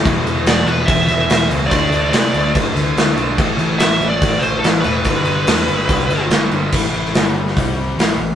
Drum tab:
CC |x-x-x-x-x-x-x-x-|x-x-x-x-x-x-x-x-|x-x-x-x-x-x-x-x-|x-x-x-x-x-x-x-x-|
HH |----------------|----------------|----------------|----------------|
SD |----o-----o-o---|----o-----o-o---|----o-------o---|----o-----o-o---|
BD |o-------o-------|o-------o-------|o-------o-------|o-------o-------|

CC |x---------------|
HH |----o---o---o---|
SD |---oo--o----o---|
BD |o-------o-------|